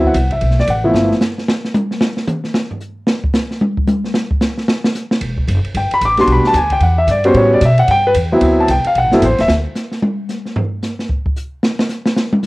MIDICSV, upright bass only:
0, 0, Header, 1, 3, 480
1, 0, Start_track
1, 0, Tempo, 267142
1, 1716, Time_signature, 4, 2, 24, 8
1, 22395, End_track
2, 0, Start_track
2, 0, Title_t, "Upright bass"
2, 0, Program_c, 0, 32
2, 0, Note_on_c, 0, 38, 84
2, 242, Note_off_c, 0, 38, 0
2, 252, Note_on_c, 0, 36, 87
2, 729, Note_off_c, 0, 36, 0
2, 741, Note_on_c, 0, 35, 88
2, 1200, Note_off_c, 0, 35, 0
2, 1211, Note_on_c, 0, 33, 82
2, 1674, Note_off_c, 0, 33, 0
2, 1684, Note_on_c, 0, 31, 81
2, 1983, Note_off_c, 0, 31, 0
2, 9356, Note_on_c, 0, 28, 76
2, 9827, Note_off_c, 0, 28, 0
2, 9838, Note_on_c, 0, 30, 93
2, 10119, Note_off_c, 0, 30, 0
2, 10322, Note_on_c, 0, 31, 81
2, 10601, Note_off_c, 0, 31, 0
2, 10801, Note_on_c, 0, 33, 88
2, 11254, Note_off_c, 0, 33, 0
2, 11265, Note_on_c, 0, 35, 84
2, 11551, Note_off_c, 0, 35, 0
2, 11740, Note_on_c, 0, 38, 101
2, 12209, Note_off_c, 0, 38, 0
2, 12220, Note_on_c, 0, 40, 84
2, 12695, Note_off_c, 0, 40, 0
2, 12706, Note_on_c, 0, 43, 90
2, 13177, Note_off_c, 0, 43, 0
2, 13188, Note_on_c, 0, 45, 91
2, 13665, Note_off_c, 0, 45, 0
2, 13677, Note_on_c, 0, 47, 96
2, 14142, Note_off_c, 0, 47, 0
2, 14153, Note_on_c, 0, 43, 84
2, 14628, Note_off_c, 0, 43, 0
2, 14639, Note_on_c, 0, 40, 86
2, 15102, Note_off_c, 0, 40, 0
2, 15113, Note_on_c, 0, 38, 85
2, 15588, Note_off_c, 0, 38, 0
2, 15605, Note_on_c, 0, 36, 90
2, 15876, Note_off_c, 0, 36, 0
2, 16083, Note_on_c, 0, 35, 86
2, 16241, Note_off_c, 0, 35, 0
2, 16241, Note_on_c, 0, 33, 60
2, 16396, Note_off_c, 0, 33, 0
2, 16407, Note_on_c, 0, 30, 69
2, 16552, Note_off_c, 0, 30, 0
2, 16563, Note_on_c, 0, 33, 88
2, 16718, Note_on_c, 0, 30, 62
2, 16745, Note_off_c, 0, 33, 0
2, 16878, Note_off_c, 0, 30, 0
2, 16889, Note_on_c, 0, 26, 75
2, 17033, Note_off_c, 0, 26, 0
2, 17044, Note_on_c, 0, 38, 77
2, 17334, Note_off_c, 0, 38, 0
2, 22395, End_track
3, 0, Start_track
3, 0, Title_t, "Muted upright bass strokes"
3, 10629, Note_on_c, 9, 29, 40
3, 10809, Note_off_c, 9, 29, 0
3, 22395, End_track
0, 0, End_of_file